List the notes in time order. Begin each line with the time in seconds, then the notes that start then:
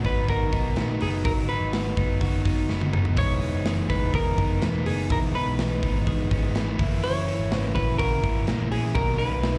Already playing: F#3 F#4
0.04 G#1 F#3 B3 D#4 B4, kick, hi-hat pedal, open hi-hat
0.27 D#3 F#3 B3 D#4 F#4 A#4, kick, hi-hat pedal, open hi-hat
0.52 B1 F#3 B3 D#4, kick, hi-hat pedal, open hi-hat
0.76 A#1 G#2 D#3 F#3 B3 D#4, snare, hi-hat pedal, open hi-hat
1.00 F#1 F#3 B3 D#4 G#4, hi-hat pedal, open hi-hat
1.24 G#1 G#2 D#3 F#3 B3 D#4 F#4 A#4, kick, hi-hat pedal, open hi-hat
1.48 F#3 B3 D#4 B4, hi-hat pedal, open hi-hat
1.61 G#1
1.72 G#2 D#3 F#3 B3 D#4 F#4, snare, hi-hat pedal, open hi-hat
1.96 F#1 F#3 B3 D#4, kick, hi-hat pedal, open hi-hat
2.20 D#3 F#3 B3 D#4 F#4, kick, hi-hat pedal, open hi-hat
2.45 F#1 F#3 B3 D#4, kick, hi-hat pedal, open hi-hat
2.69 G#2 D#3 F#3 B3 D#4, snare
2.81 high tom
2.93 F#1 F#3 B3 D#4, mid tom
3.05 floor tom
3.16 E1 E3 G#3 B3 D#4 G#4 C#5, kick, hi-hat pedal, open hi-hat
3.41 G#3 B3 D#4, hi-hat pedal, open hi-hat
3.54 F#1
3.65 E3 G#3 B3 D#4 G#4, snare, hi-hat pedal, open hi-hat
3.88 E1 G#3 B3 D#4 B4, kick, hi-hat pedal, open hi-hat
4.13 E3 G#3 B3 D#4 G#4 A#4, kick, hi-hat pedal, open hi-hat
4.37 F#1 G#3 B3 D#4, kick, hi-hat pedal, open hi-hat
4.61 E1 E3 G#3 B3 D#4, snare, hi-hat pedal, open hi-hat
4.85 F#1 G#3 B3 D#4 G#4, hi-hat pedal, open hi-hat
5.09 E1 E3 G#3 B3 D#4 G#4 A#4, kick, hi-hat pedal, open hi-hat
5.33 G#3 B3 D#4 B4, hi-hat pedal, open hi-hat
5.46 B1
5.58 E3 G#3 B3 D#4 F#4, snare, hi-hat pedal, open hi-hat
5.71 G#4
5.83 G#1 G#3 B3 D#4, kick, hi-hat pedal, open hi-hat
6.07 E3 G#3 B3 D#4 G#4, kick, hi-hat pedal, open hi-hat
6.31 G#1 G#3 B3 C#4 D#4, kick, hi-hat pedal, open hi-hat
6.43 D#4
6.55 E3 G#3 B3 D#4, snare, hi-hat pedal, open hi-hat
6.79 F#1 E3 A#3 E4, kick, hi-hat pedal, open hi-hat
6.83 E3
7.03 F#2 C#3 E3 A#3 E4 F#4 C#5, hi-hat pedal, open hi-hat
7.27 E3 A#3 C#4 E4, hi-hat pedal, open hi-hat
7.39 G#1
7.51 F#2 C#3 E3 A#3 E4 F#4, snare, hi-hat pedal, open hi-hat
7.59 B4
7.75 A#1 A#3 C#4 E4 B4, kick, hi-hat pedal, open hi-hat
7.79 E3
7.98 C#3 E3 A#3 F#4 A#4, kick, hi-hat pedal, open hi-hat
8.02 E4
8.23 G#1 E3 A#3 B3 E4, kick, hi-hat pedal, open hi-hat
8.35 C#4
8.46 A#1 F#2 C#3 E3 A#3 E4, snare, hi-hat pedal, open hi-hat
8.70 A#1 E3 A#3 C#4 E4 G#4, hi-hat pedal, open hi-hat
8.95 B1 B2 D#3 F#3 A#3 D#4 F#4 A#4, kick, hi-hat pedal, open hi-hat
9.18 F#3 A#3 C#4 D#4 B4, hi-hat pedal, open hi-hat
9.31 B1 D#4
9.42 B2 F#3 A#3 D#4 E4, snare, hi-hat pedal, open hi-hat
9.54 F#4